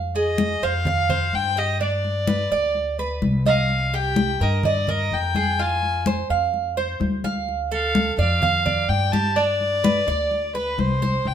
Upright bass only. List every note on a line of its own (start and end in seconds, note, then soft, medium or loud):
0.00 0.55 F2 medium
0.62 1.29 F2 medium
1.33 2.45 G2 medium
2.51 3.18 D2 medium
3.22 4.34 C2 medium
4.40 5.07 G2 loud
5.12 6.23 F2 medium
6.29 6.96 F2 medium
7.00 8.12 D2 medium
8.18 8.85 F2 loud
8.88 10.01 G2 medium
10.07 10.74 D2 loud
10.78 11.20 C2 medium
11.25 11.34 C2 medium